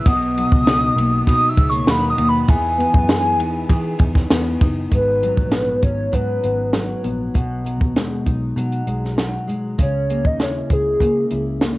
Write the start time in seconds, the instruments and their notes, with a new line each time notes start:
Already playing: nylon-string guitar B3 E4 G#4
0.06 picked electric bass B1, nylon-string guitar B2, soft synth lead D#6, kick, ride
0.37 nylon-string guitar F#3, ride
0.52 picked electric bass C#2, kick
0.66 nylon-string guitar D#4, snare, ride
0.96 picked electric bass B1, nylon-string guitar A#3, ride
1.27 picked electric bass B2, nylon-string guitar D#4, soft synth lead D#6, kick, ride
1.49 soft synth lead E6
1.56 picked electric bass C#2, nylon-string guitar G#3, kick, ride
1.69 nylon-string guitar A#3, soft synth lead C#6
1.87 picked electric bass D#2, nylon-string guitar F#3, soft synth lead B5, snare, ride
2.10 soft synth lead D#6
2.18 picked electric bass D#2, nylon-string guitar A#3, ride
2.29 soft synth lead B5
2.48 picked electric bass E2, nylon-string guitar E3, soft synth lead G#5, kick, ride
2.78 nylon-string guitar B3, ride
2.94 picked electric bass F#2, kick
3.09 nylon-string guitar G#4, snare, ride
3.39 picked electric bass E2, nylon-string guitar D#4, ride
3.70 picked electric bass E3, nylon-string guitar G#4, kick, ride
3.99 picked electric bass E2, nylon-string guitar D#4, kick, ride
4.15 kick, snare
4.30 picked electric bass E2, nylon-string guitar B3, snare, ride
4.61 picked electric bass F#1, nylon-string guitar D#4, kick, ride
4.91 picked electric bass G#1, nylon-string guitar G#2, soft synth lead B4, kick, closed hi-hat
5.22 nylon-string guitar F#3, closed hi-hat
5.37 picked electric bass A#1, kick
5.51 nylon-string guitar B3, snare, closed hi-hat
5.83 picked electric bass G#1, nylon-string guitar C#4, soft synth lead C#5, kick, closed hi-hat
6.12 picked electric bass G#2, nylon-string guitar F#3, soft synth lead B4, kick, closed hi-hat
6.43 picked electric bass G#1, nylon-string guitar B3, closed hi-hat
6.73 nylon-string guitar F#3, snare, closed hi-hat
7.03 picked electric bass A#1, nylon-string guitar B3, closed hi-hat
7.34 picked electric bass B1, nylon-string guitar B2, kick, closed hi-hat
7.65 nylon-string guitar F#3, closed hi-hat
7.81 picked electric bass D#2, kick
7.96 nylon-string guitar G#3, snare, closed hi-hat
8.26 picked electric bass B1, nylon-string guitar D#4, kick, closed hi-hat
8.56 picked electric bass B2, nylon-string guitar F#3, closed hi-hat
8.72 closed hi-hat
8.87 picked electric bass B1, nylon-string guitar G#3, closed hi-hat
9.05 snare
9.16 nylon-string guitar F#3, snare, closed hi-hat
9.47 nylon-string guitar G#3, closed hi-hat
9.78 picked electric bass C#2, nylon-string guitar C#3, soft synth lead C#5, kick, closed hi-hat
10.10 nylon-string guitar A#3, closed hi-hat
10.25 picked electric bass D#2, soft synth lead D#5, kick
10.40 nylon-string guitar E4, soft synth lead C#5, snare, closed hi-hat
10.70 picked electric bass C#2, nylon-string guitar G#4, soft synth lead G#4, kick, closed hi-hat
11.00 picked electric bass C#3, nylon-string guitar A#3, kick, closed hi-hat
11.31 picked electric bass C#2, nylon-string guitar E4, closed hi-hat
11.61 nylon-string guitar A#3, snare, closed hi-hat